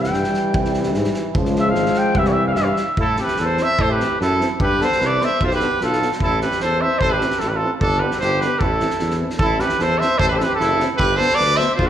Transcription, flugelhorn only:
Already playing: G5
1.59 E5
1.70 F5
1.98 G5
2.18 E5
2.27 C#5
2.32 E5
2.47 F5
2.51 E5 F5
2.57 E5
2.63 F5
2.71 E5
2.99 E4
3.19 G4
3.39 A4
3.59 C5
3.79 A4
3.90 G4
4.22 E4
4.60 G4
4.82 A4
5.01 B4
5.21 C5
5.44 F4
5.51 G4
5.82 F4
6.21 E4
6.42 G4
6.64 A4
6.82 C5
7.03 A4
7.12 G4
7.41 E4
7.47 G4
7.54 F4
7.81 D4
8.04 G4
8.22 G4
8.44 G4
8.63 E4
9.42 E4
9.61 G4
9.81 A4
10.01 C5
10.19 A4
10.31 G4
10.38 A4
10.45 G4
10.60 E4
10.98 G4
11.17 A4
11.39 B4
11.55 C5
11.76 F4

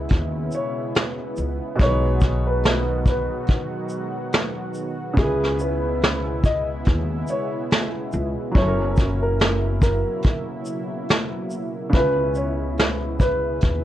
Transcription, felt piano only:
Already playing: C#3 G#3 E4 B4
1.75 B2 G#3
1.81 D#4 B4
5.14 C#3 C#4
5.20 E4 B4
8.52 F#3 C#4
8.58 E4 A4
8.68 A#4
11.89 C#3 C#4
11.96 E4 B4

